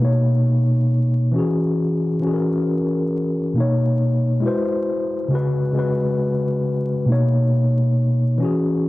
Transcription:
tine electric piano
Already playing: B2
0.00 A#3 D#4
0.05 C#5
1.32 E3 C#4
1.36 F#4 G#4
2.20 E3 C#4
2.24 F#4 G#4
2.33 A#4
3.54 B2 A#3
3.58 D#4 C#5
4.40 G#3 E4 F#4
4.46 B4 C5
5.28 C#3 G#3
5.33 F#4 B4
5.72 C#3 G#3
5.77 F#4 B4
7.05 B2 A#3
7.10 D#4 C#5
8.38 E3 C#4
8.42 F#4 G#4

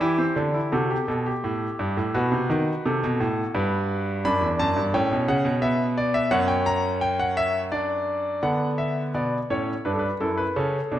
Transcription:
grand piano
0.00 E3 E4 G4
0.18 C4
0.36 D3 D4
0.54 E4
0.72 C3 F#4 A4
0.90 G4
1.08 B2 A4
1.26 G4
1.44 A2
1.79 G2
1.97 A2
2.14 B2 F#4 B4
2.32 C3
2.50 D#3
2.86 C3 A4
3.03 B2
3.20 A2
3.55 G2 B4
4.25 F#2 D4 B5
4.41 E2
4.59 F#2 A5
4.76 G2
4.94 A2 C#4 G5
5.11 B2
5.28 C#3 F#5
5.45 B2
5.62 B3 E5
5.98 D5
6.14 E5
6.31 F#2 C#4 F#5
6.48 G5
6.66 A#5
7.01 G5
7.19 F#5
7.37 E5
7.72 D4 D5
8.43 D3 B3 F#5
8.78 E5
9.14 B2 B3 D5
9.50 A2 C#4 C#5
9.85 G2 D4 B4
9.93 A4
9.99 B4
10.20 F#2 E4 A4
10.37 B4
10.56 C#3 C#4 A4
10.91 B2 D4

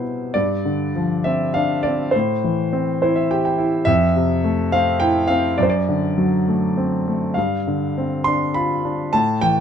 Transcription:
grand piano
Already playing: B2 C3 G3 B3 E4 C5
0.34 G2 D5
0.65 D3
0.96 F3
1.24 C4 E5
1.54 D4 F5
1.83 C4 D5
2.11 A2 C5
2.44 E3
2.73 C4
3.02 E4 C5
3.16 E5
3.31 G4 G5
3.45 G5
3.58 E4
3.85 F2 E5
4.16 C3
4.44 A3
4.72 C4 F5
5.00 E4 G5
5.28 C4 F5
5.58 F#2 D5
5.63 C5
5.70 D5
5.89 D3
6.18 F#3
6.48 A3
6.78 C4
7.08 A3
7.34 G2 F5
7.67 D3
7.98 C4
8.24 D4 C6
8.54 F4 B5
8.85 D4
9.13 A2 A5
9.41 E3 G5

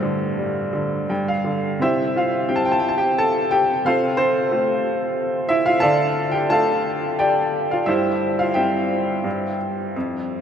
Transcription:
upright piano
Already playing: G2 A4 C5
0.03 D3
0.38 G3
0.73 D3
1.10 G2 G5
1.28 F5
1.44 D3
1.79 C3 E4 G4 C5 E5
2.16 F4 F5
2.48 C4 E4 G4 G5
2.56 A5
2.65 G5
2.72 A5
2.80 G5
2.88 A5
2.98 G4 G5
3.18 A4 A5
3.51 G4 G5
3.85 C3 F4 A4 C5 F5
4.17 C4 A4 C5
4.51 A3 C4 F4
5.49 E4 E5
5.66 F4 F5
5.80 D3 A4 D5 F5 A5
6.31 G4 G5
6.49 A3 D4 F4 A4 F5 A5
7.19 G4 D5 G5
7.71 F4 F5
7.86 G2 E4 G4 C5 E5
8.39 F4 F5
8.54 G3 C4 E4 G4 E5 G5
9.24 G2
9.96 F2

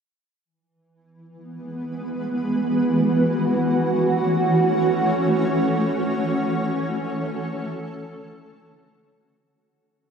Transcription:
ambient pad
0.45 E3
0.96 B3
1.17 B4
1.45 F#4
3.19 C#4
3.24 C#5
3.39 A3
5.98 A4
7.21 D3

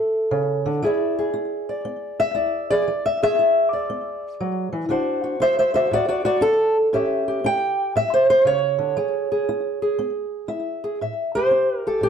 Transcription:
steel-string acoustic guitar
Already playing: A2 A4 E5
0.31 C#3
0.66 D3
0.82 E3 E4 G#4 D5 E5
1.19 G#4
1.34 E4
1.69 D5
1.85 B3
2.20 E5
2.35 E4 D5
2.70 G#4 D5
2.87 E3
3.06 E5
3.23 G#4 E5
3.39 E4
3.73 D5
3.90 B3
4.40 F#3
4.72 E3
4.89 D3 D4 F#4 C5 F#5
5.24 F#4
5.40 D4 C5 E5
5.59 C5 E5
5.74 F#4 C5 E5
5.91 A2 F#4 D5
6.08 F#4 D5
6.25 F#4 D5
6.41 D4 A4
6.93 A2 C#4 G4 E5
7.28 G4
7.44 C#4 G5
7.96 A2 E5
8.14 C5
8.30 C5
8.45 C#3 C#5
8.79 D3
8.97 E3 G#4
9.32 G#4
9.49 E4
9.82 G#4
9.99 B3
10.48 E4 E5
10.84 G#4
11.01 A2 E5
11.35 G4 C5
11.51 C#4
11.87 G4 A4
12.01 A2 G4

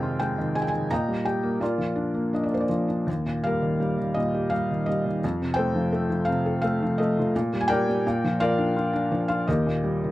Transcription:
felt piano
Already playing: F2 C3 D#3 G#3 G#4 C5 F5 G5
0.03 F4
0.20 G#3 G5
0.38 D#3
0.55 G#3 G#5
0.62 G5
0.68 D#3 G#5
0.91 A#2 D#5 G5 A#5
1.08 G3
1.25 G4 G5
1.43 A#3
1.60 A#2 F4 A#4 D5
1.78 F3
1.95 D4
2.14 A#3
2.33 D4 D#5
2.43 D5
2.51 A#3 C5
2.61 D5
2.69 F3
2.88 D4
3.07 D#2
3.26 A#2
3.44 G3 A#4 F5
3.62 D#3
3.80 G3
3.98 D#3
4.14 A#2 D#5
4.34 G4
4.50 G3 F5
4.71 D#3
4.86 G3 D#5
5.06 D#3
5.24 F2
5.42 C3
5.54 C5 G5
5.58 A3
5.75 F3
5.92 A3
6.10 F3
6.25 C3 F5
6.46 A4
6.62 A3 F5
6.82 F3
6.98 A3 D#5
7.19 F3
7.36 A#2
7.54 G3
7.61 G#5
7.68 G4 A#4 D5 G5
7.89 G3
8.07 A#2
8.24 F3
8.40 F4 A#4 D5 F5
8.58 D4
8.77 F4
8.93 D4
9.12 F3
9.28 F4 F5
9.47 D#2 G4 A#4 D#5
9.66 A#2
9.84 G3
10.04 D#3

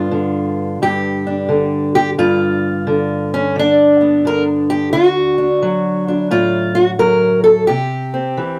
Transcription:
steel-string acoustic guitar
Already playing: G2 D3 B3 D4 F4
0.11 D3
0.82 G2 G4
1.27 D4
1.49 D3
1.95 G4
2.18 G2 F4
2.87 D3
3.34 C#4
3.56 D3 D4
4.01 B3
4.25 D3 A#4
4.70 G4
4.93 D3 F#4
5.38 D4
5.62 F#3
6.08 D4
6.16 E4
6.31 A2 F4
6.75 F#4
6.99 F#3 A#4
7.44 A4
7.67 C3 G4
8.14 C4
8.37 E3

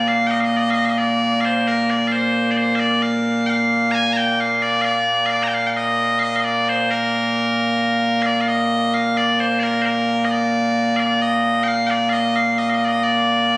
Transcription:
bagpipes
Already playing: A#2 A#3
0.08 F5
0.27 D#5 G5
0.40 F5
0.45 D#5
0.57 D5 D#5
0.71 D#5 F5
0.85 F5
0.90 D#5
0.98 D5
1.41 C5 F5
1.68 A#4
1.90 D5
2.08 F5
2.12 C5
2.51 D5
2.57 C5
2.75 F5
2.80 D5
3.02 F5
3.46 F5 G5
3.91 G#5 A#5
4.13 G5 A#5
4.40 F5
4.62 D5
4.82 D5 F5
5.26 D5 F5
5.43 A#5
5.48 G5
5.54 F5
5.67 F5 G5
5.77 D#5
6.19 D#5 F5
6.36 F5
6.40 D#5
6.44 D5
6.69 C5
6.91 A#4
8.22 D5 F5
8.41 F5
8.48 D#5
8.94 F5
9.17 D5
9.40 C5
9.59 A#4 D5
9.82 A#4 C5
10.25 D#5
10.31 D5
10.96 D5 F5
11.22 D#5
11.64 G5
11.68 F5
11.87 D5 G5
12.10 D#5 F5
12.36 F5
12.58 D#5
12.70 F5
12.74 D#5
12.85 D5 D#5
13.03 D5

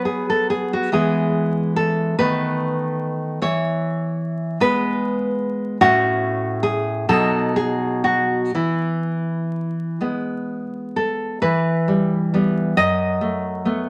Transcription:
nylon-string guitar
Already playing: F#3 B3
0.05 G#4
0.30 A4
0.50 G#4
0.73 F#4
0.92 E3 G#3 B3 G#4
1.76 A4
2.19 D#3 A3 B3 B4
3.42 E3 C#5
4.60 G#3 B3 B4
5.81 A2 A3 C#4 F#4
6.63 G#4
7.09 B2 F#3 D#4 A4
7.56 G#4
8.04 F#4
8.55 E3 E4
10.01 G#3 B3
10.96 A4
11.42 E3 B4
11.88 G3
12.34 G3 B3
12.77 F#2 D#5
13.21 A3
13.65 A3 B3

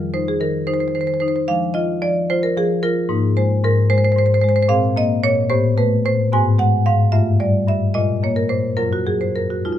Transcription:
marimba
Already playing: D#3 G3 F4 A#4
0.14 D#4 C5
0.28 G#4
0.40 D#3 A#4
0.67 D#4 C5
0.74 C5
0.80 C5
0.88 C5
0.95 D#3 C5
1.01 C5
1.07 C5
1.14 C5
1.20 D#4 C5
1.28 C5
1.36 C5
1.48 F3 G#3 D4 F5
1.74 F4 D#5
2.02 F3 D5
2.30 F4 C5
2.43 A#4
2.57 F3 G#4
2.83 F4 A#4
3.09 G#2 A#3 D#4
3.37 G#3 C5
3.64 G#2 A#4
3.90 G#3 C5
3.98 C5
4.05 C5
4.12 C5
4.16 G#2 C5
4.26 C5
4.34 C5
4.41 G#3 C5
4.49 C5
4.56 C5
4.63 C5
4.68 A#2 C4 G#4 F5
4.96 A#3 D#5
5.24 A#2 C#5
5.50 A2 B3 G4 C5
5.78 A3 B4
6.06 A2 C5
6.32 G#2 B3 F#4 G#5
6.58 G#3 F#5
6.86 G#2 F5
7.12 G2 A3 F4 E5
7.40 G3 D5
7.67 G2 E5
7.94 A#2 G#3 F4 D#5
8.23 A#3 C#5
8.36 A#4
8.49 A#2 C5
8.77 F#2 F#3 F4 A#4
8.93 F#4
9.06 F#3 G#4
9.21 C5
9.36 F#2 A#4
9.50 F#4
9.65 F2 G#3 D#4 F4
9.73 F4

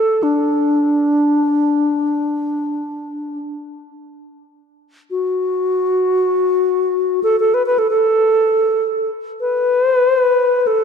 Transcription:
bass flute
Already playing: A4
0.23 D4
5.11 F#4
7.23 A4
7.40 A4
7.54 B4
7.66 B4
7.78 A4
7.90 A4
9.40 B4
9.83 C5
9.95 B4
10.07 C5
10.19 B4
10.67 A4

